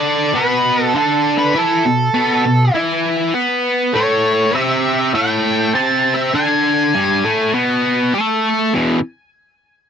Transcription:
Already playing: D3 D4 D5
0.34 B2 B3 B4
0.84 A4
0.94 D3 D4 A4
1.38 B4
1.55 E3 E4 A4
1.85 B2
2.14 B2 B3
2.45 B2
2.75 E3 E4
3.34 B3 B4
3.94 A2 A3 C#5
4.54 C3 C4 E5
5.14 A2 A3 G5
5.75 C3 C4 A5
6.14 E5
6.34 D3 D4 G#5
6.95 G2 G3
7.24 A2 A3
7.54 B2 B3
8.14 A3 A4
8.73 E2 B2 E3

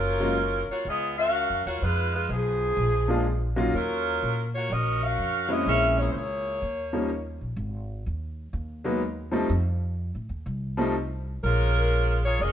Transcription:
Already playing: F#1 F#3 C#4 F4 A#4
0.20 F#3 G#3 A#3 C#4 F4
0.68 A#3 F4 F#4 C#5, muted upright bass stroke
0.85 C#2 B3 F4 G#4 D#5
1.18 C#4 F#4 A#4 F5
1.50 F2
1.66 D#2 A#3 F4 F#4 C#5
1.82 F2 G#3 D#4 F4 B4
2.14 G#3 D#4 F4 B4
2.29 B1 F3 B3 D#4 G#4
2.77 A#1
3.08 F3 G#3 A#3 D4 F4
3.56 F#3 A#3 C#4 D#4 F4
3.74 D#2 F#3 C#4 F4 A#4
4.23 A#2
4.55 A#3 F4 F#4 C#5
4.70 A#1 C#4 F#4 A#4 D#5
5.04 C#4 F#4 A#4 F5
5.18 F2
5.49 G#3 A#3 C4 C#4 E4 F#4 A#4 D#5
5.66 A#1 C#4 G#4 A#4 E5
5.99 A#3 E4 G#4 C#5
6.10 C#2 A#3 G#4 C5 C#5
6.14 E4
6.62 D#2
6.93 F3 G3 A#3 C#4 D#4
7.41 A#1
7.57 G#1
8.06 D#2
8.53 D#2
8.84 F#3 G#3 A#3 B3 D#4
9.31 F3 G3 A3 C4 D#4
9.49 F2
10.15 A2
10.29 D#2
10.46 C2
10.77 F3 G3 A3 C4 D#4
11.43 A#1 G#3 C#4 F4 A#4
12.25 A#3 F4 G#4 C#5
12.40 F1 C#4 G#4 A#4 D#5

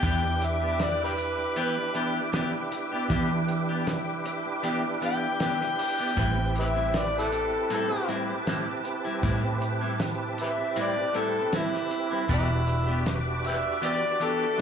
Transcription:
Already playing: E5 G5 D6
0.03 E2 E3 B3 D4 E4 G4 B4, kick, closed hi-hat
0.23 muted clean electric guitar stroke
0.41 muted clean electric guitar stroke, closed hi-hat
0.45 E5
0.61 B3 D4 G4
0.80 muted clean electric guitar stroke, snare, closed hi-hat
0.84 D5
1.04 D4 G4 B4
1.18 muted clean electric guitar stroke, closed hi-hat
1.38 muted clean electric guitar stroke
1.56 E3 B3 D4 G4 B4, closed hi-hat
1.77 muted clean electric guitar stroke
1.94 E3 B3 D4 G4, closed hi-hat
2.32 E3 B3 D4 G4, snare, closed hi-hat
2.53 muted clean electric guitar stroke
2.71 muted clean electric guitar stroke, closed hi-hat
2.92 B3 D4 G4
3.10 E3 B3 D4 G4, kick, closed hi-hat
3.30 muted clean electric guitar stroke
3.48 muted clean electric guitar stroke, closed hi-hat
3.69 B3 D4 G4
3.87 muted clean electric guitar stroke, snare, closed hi-hat
4.25 muted clean electric guitar stroke, closed hi-hat
4.46 muted clean electric guitar stroke
4.63 E3 B3 D4 G4, closed hi-hat
4.84 muted clean electric guitar stroke
5.01 E3 B3 D4 G4, closed hi-hat
5.06 G5
5.40 E3 B3 D4 G4, snare, closed hi-hat
5.61 muted clean electric guitar stroke, snare
5.78 muted clean electric guitar stroke, open hi-hat
5.99 B3 D4 G4
6.16 A1 A2 G3 C4 E4 G4 B4 A5, kick, closed hi-hat
6.37 muted clean electric guitar stroke
6.55 muted clean electric guitar stroke, closed hi-hat
6.60 G4 B4 E5
6.75 G3 C4 E4
6.93 muted clean electric guitar stroke, snare, closed hi-hat
6.98 D5
7.19 E4 A4
7.32 muted clean electric guitar stroke, closed hi-hat
7.52 muted clean electric guitar stroke
7.70 A2 G3 C4 E4, closed hi-hat
7.75 A4
7.90 muted clean electric guitar stroke
8.08 A2 G3 C4 E4, closed hi-hat
8.46 A2 G3 C4 E4, snare, closed hi-hat
8.67 muted clean electric guitar stroke
8.84 muted clean electric guitar stroke, closed hi-hat
9.05 G3 C4 E4
9.22 A2 G3 C4 E4, kick, closed hi-hat
9.43 muted clean electric guitar stroke
9.61 muted clean electric guitar stroke, closed hi-hat
9.81 G3 C4 E4
9.99 muted clean electric guitar stroke, snare, closed hi-hat
10.38 muted clean electric guitar stroke, closed hi-hat
10.42 G4 B4 E5
10.58 muted clean electric guitar stroke
10.76 A2 G3 C4 E4, closed hi-hat
10.81 D5
10.97 muted clean electric guitar stroke
11.14 A2 G3 C4 E4, closed hi-hat
11.18 A4
11.52 A2 G3 C4 E4, snare, closed hi-hat
11.57 E4
11.73 muted clean electric guitar stroke, snare
11.91 muted clean electric guitar stroke, closed hi-hat
12.11 G3 C4 E4
12.28 E1 E3 B3 D4 F#4 G4 B4 D5 E5 D6, kick, closed hi-hat
12.34 E4
12.49 muted clean electric guitar stroke
12.67 muted clean electric guitar stroke, closed hi-hat
12.87 B3 D4 G4
13.05 muted clean electric guitar stroke, snare, closed hi-hat
13.44 muted clean electric guitar stroke, closed hi-hat
13.48 G4 B4 E5
13.64 muted clean electric guitar stroke
13.82 E3 B3 D4 G4, closed hi-hat
13.86 D5
14.02 muted clean electric guitar stroke
14.20 E3 B3 D4 G4, closed hi-hat
14.24 A4
14.58 E3

